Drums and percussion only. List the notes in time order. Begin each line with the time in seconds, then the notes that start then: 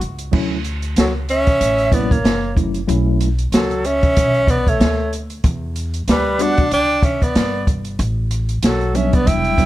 0.01 closed hi-hat
0.19 closed hi-hat
0.33 kick, crash
0.64 closed hi-hat
0.82 closed hi-hat
0.96 snare, closed hi-hat
1.29 closed hi-hat
1.47 kick, closed hi-hat
1.61 closed hi-hat
1.78 closed hi-hat
1.92 kick, closed hi-hat
2.11 kick, closed hi-hat
2.25 snare, closed hi-hat
2.57 kick, closed hi-hat
2.74 closed hi-hat
2.89 closed hi-hat
3.21 closed hi-hat
3.39 closed hi-hat
3.52 snare, closed hi-hat
3.71 closed hi-hat
3.85 closed hi-hat
4.03 kick, closed hi-hat
4.17 kick, closed hi-hat
4.34 closed hi-hat
4.47 kick, closed hi-hat
4.67 kick, closed hi-hat
4.81 snare, closed hi-hat
5.13 closed hi-hat
5.30 closed hi-hat
5.44 kick, closed hi-hat
5.76 closed hi-hat
5.94 closed hi-hat
6.08 snare, closed hi-hat
6.39 closed hi-hat
6.57 kick, closed hi-hat
6.71 closed hi-hat
7.03 kick, closed hi-hat
7.22 kick, closed hi-hat
7.35 snare, closed hi-hat
7.67 kick, closed hi-hat
7.85 closed hi-hat
7.99 closed hi-hat
8.31 closed hi-hat
8.49 closed hi-hat
8.63 snare, closed hi-hat
8.81 closed hi-hat
8.95 closed hi-hat
9.13 kick, closed hi-hat
9.27 kick, closed hi-hat
9.44 closed hi-hat
9.58 kick, closed hi-hat